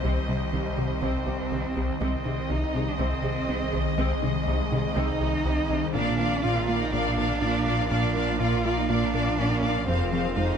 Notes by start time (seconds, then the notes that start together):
Already playing: C2 D#3 C4 G4 C5 D#5
0.03 C2 C3 G3 C4
0.29 C3 G3 G4
0.53 C2 C3 D#3 D#4
0.78 C3 G3 G4
1.02 C2 C3 C4
1.27 C2 C3 C4 G4
1.51 C2 C3 D#3 D#4
1.76 C2 C3 C4 G4
2.00 C2 C3 D#3 G#3 C4 G#4 C5 D#5
2.25 C3 D#4 G#4
2.49 C2 C3 C4 D#4
2.75 C3 D#4 G#4
2.88 D4
2.99 C2 C3 G#3 C4
3.24 C2 C3 G#4
3.48 C2 C3 C4 D#4
3.73 C2 C3 G#4
3.97 C2 C3 G#3 C4
4.22 C3 D#4 G#4
4.46 C2 C3 C4 D#4
4.71 C3 D#4 G#4
4.96 C2 C3 G#3 C4 D#4
5.20 C2 C3 G#4
5.45 C2 C3 C4 D#4
5.69 C2 C3 G#4
5.94 A#1 A#2 F3 A#3 D4 F4 A#4 D5 F5
6.19 A#3 F4 A#4 D5 F5
6.43 A#2 D4 F4 A#4 D5 F5
6.67 A#3 F4 A#4 D5 F5
6.81 D#4
6.92 A#2 A#3 D4 F4 A#4 D5 F5
7.18 A#2 F4 A#4 D5 F5
7.41 A#2 D4 F4 A#4 D5 F5
7.66 A#2 F4 A#4 D5 F5
7.90 A#2 A#3 D4 F4 A#4 D5 F5
8.15 A#3 F4 A#4 D5 F5
8.39 A#2 D4 F4 A#4 D5 F5
8.64 A#3 F4 A#4 D5 F5
8.77 D#4
8.89 A#2 A#3 D4 F4 A#4 D5 F5
9.14 A#2 F4 A#4 D5 F5
9.38 A#2 D4 F4 A#4 D5 F5
9.62 A#2 F4 A#4 D5 F5
9.87 F1 F2 F3 C4 F4 G#4 C5 F5
10.12 F3 C4 F4 G#4 C5 F5
10.36 F2 G#3 D#4 F4 G#4 C5 F5